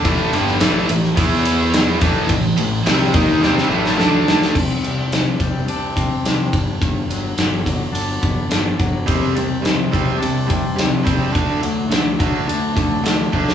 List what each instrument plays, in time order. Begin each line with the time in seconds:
0.05 fingered electric bass A1, distorted electric guitar A2 E3 A3, kick, ride
0.33 fingered electric bass G1, distorted electric guitar G2 D3 G3, ride
0.48 snare
0.60 fingered electric bass A1, distorted electric guitar A2 E3 A3, snare, ride
0.89 fingered electric bass A1, distorted electric guitar A2 E3, ride
1.04 snare
1.16 fingered electric bass E2, distorted electric guitar E3 B3 E4, kick, ride
1.45 ride
1.73 snare, ride
2.01 fingered electric bass A1, distorted electric guitar A2 E3 A3, kick, ride
2.29 fingered electric bass A1, distorted electric guitar A2 E3, kick, ride
2.57 fingered electric bass A1, distorted electric guitar A2 E3, ride
2.86 fingered electric bass C2, distorted electric guitar C3 G3 C4, snare, ride
3.14 fingered electric bass D#2, distorted electric guitar D#3 A#3 D#4, kick, ride
3.41 fingered electric bass C2, distorted electric guitar C3 G3 C4, snare
3.58 snare
3.69 fingered electric bass A1, distorted electric guitar A2 E3 A3
3.86 snare
3.97 fingered electric bass D2, distorted electric guitar D3 A3 D4, snare
4.28 snare
4.42 snare
4.55 fingered electric bass C2, clean electric guitar C3, kick, crash
4.82 fingered electric bass C2, clean electric guitar G3, ride
5.11 fingered electric bass C2, clean electric guitar C3, snare, ride
5.40 fingered electric bass C2, clean electric guitar G3, kick, ride
5.65 fingered electric bass C2, clean electric guitar D4, ride
5.96 clean electric guitar C4, kick, ride
6.24 fingered electric bass C2, clean electric guitar C3, snare, ride
6.53 fingered electric bass G1, clean electric guitar G2, kick, ride
6.81 fingered electric bass G1, clean electric guitar G2, kick, ride
7.09 fingered electric bass G1, clean electric guitar F#3, ride
7.37 fingered electric bass G1, clean electric guitar D3, snare, ride
7.65 clean electric guitar F#3, kick, ride
7.93 fingered electric bass G1, clean electric guitar D4, ride
8.21 fingered electric bass G1, clean electric guitar B3, kick, ride
8.49 fingered electric bass G1, clean electric guitar D3, snare, ride
8.79 fingered electric bass G1, clean electric guitar F#3, kick, ride
9.06 fingered electric bass C2, distorted electric guitar C3 G3 C4, clean electric guitar C3, kick, ride
9.35 fingered electric bass C2, distorted electric guitar C3 G3, clean electric guitar G3, ride
9.62 fingered electric bass C2, distorted electric guitar C3 G3, clean electric guitar C3, snare, ride
9.91 fingered electric bass C2, distorted electric guitar C3 G3 C4, clean electric guitar G3, kick, ride
10.18 fingered electric bass C2, distorted electric guitar C3 G3, clean electric guitar D4
10.22 ride
10.47 distorted electric guitar C3 G3, clean electric guitar C4, kick, ride
10.76 fingered electric bass C2, distorted electric guitar C3 G3, clean electric guitar C3, snare, ride
11.04 fingered electric bass C2, distorted electric guitar C3 G3 C4, clean electric guitar G3, kick, ride
11.31 distorted electric guitar D3 A3 D4, clean electric guitar D3, kick, ride
11.35 fingered electric bass D2
11.61 fingered electric bass D2, distorted electric guitar D3 A3, clean electric guitar F#3, ride
11.89 fingered electric bass D2, clean electric guitar D3, distorted electric guitar D3 A3, snare, ride
12.19 distorted electric guitar D3 A3 D4, clean electric guitar F#3, kick, ride
12.47 fingered electric bass D2, distorted electric guitar D3 A3, clean electric guitar D4, ride
12.76 fingered electric bass D2, distorted electric guitar D3 A3, clean electric guitar A3, kick, ride
13.03 fingered electric bass D2, clean electric guitar D3, distorted electric guitar D3 A3, snare, ride
13.32 fingered electric bass D2, distorted electric guitar D3 A3 D4, clean electric guitar F#3, kick
13.49 snare